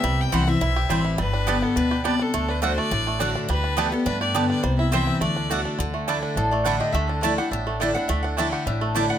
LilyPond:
<<
  \new Staff \with { instrumentName = "Resonator guitar played with a steel bar" } { \time 4/4 \key d \mixolydian \tempo 4 = 208 r1 | r1 | r1 | r1 |
r1 | r2 a'8 d''8 fis''8 ees''8 | e''8 a'8 d''8 fis''8 e''8 a'8 d''8 fis''8 | e''8 fis''8 g''8 fis''8 e''8 a'8 d''8 fis''8 | }
  \new Staff \with { instrumentName = "Fiddle" } { \time 4/4 \key d \mixolydian e''8 g''8 fis''8 e''2 r8 | b'4. a'8 b'4 d''8 a'8~ | a'8 b'8 c''8 d''2 r8 | b'4. a'8 b'8 d''4 d''8 |
c''8 e''8 e''4 d''4. r8 | r1 | r1 | r1 | }
  \new Staff \with { instrumentName = "Mandolin" } { \time 4/4 \key d \mixolydian r4 <c' e' c'' g''>8 r4. <c' e' c'' g''>8 r8 | r4 <b g' d'' a''>8 r4. <b g' d'' a''>8 r8 | r4 <a fis' d'' fis''>8 r4. <a fis' d'' fis''>8 r8 | r4 <b g' d'' a''>8 r4. <b g' d'' a''>8 r8 |
r4 <c' e' c'' g''>8 r4. <a fis' d'' fis''>8 r8 | r4 <a e' d'' a''>8 r4. <a e' d'' a''>8 r8 | r4 <a e' d'' a''>8 r4. <a e' d'' a''>8 r8 | r4 <a e' d'' a''>8 r4. <a e' d'' a''>8 r8 | }
  \new Staff \with { instrumentName = "Five-string banjo" } { \time 4/4 \key d \mixolydian g4 g'8 c'8 e'8 g'8 g8 e'8 | g8 d'8 g'8 b8 d'8 g'8 g8 d'8 | a8 d'8 d'8 a8 d'8 a8 d'8 d'8 | g8 d'8 g'8 b8 d'8 g'8 g8 d'8 |
g8 e'8 g'8 c'8 a8 d'8 d'8 d'8 | d8 a8 d'8 d'8 d'8 a8 d'8 g'8 | a8 d'8 a8 g'8 d'8 a8 g'8 d'8 | a8 d'8 a8 g'8 d'8 a8 g'8 d'8 | }
  \new Staff \with { instrumentName = "Steel-string acoustic guitar" } { \time 4/4 \key d \mixolydian << { r4 <e g c' e'>8 <c' e'>8 r4 <e g c' e'>4 | r4 <d g b g'>4 r2 | r4 <d a d' fis'>4 r4 <d a d' fis'>4 | r4 <d a b g'>8 <b g'>8 r4 <d a b g'>4 |
r4 <e g c' e'>4 r4 <d a d' fis'>4 | r4 <d a d' e'>4 r4 <d a d' e'>4 | r4 <d a d' e'>8 <d' e'>8 r4 <d a d' e'>8 <d' e'>8 | r4 <d a d' e'>4 r4 <d a d' e'>4 | } \\ { c2 g,2 | g,2 b,4 c4 | d2 a,2 | d2 a2 |
c2 d2 | d2 a,2 | d2 a,2 | d2 a,2 | } >> }
  \new Staff \with { instrumentName = "Upright bass" } { \clef bass \time 4/4 \key d \mixolydian c,4 c,4 b,,4 a,,4 | g,,2 d,2 | d,2 a,,2 | d,2 g,2 |
c,2 d,2 | d,2 a,,2 | d,2 a,,2 | d,2 a,,2 | }
>>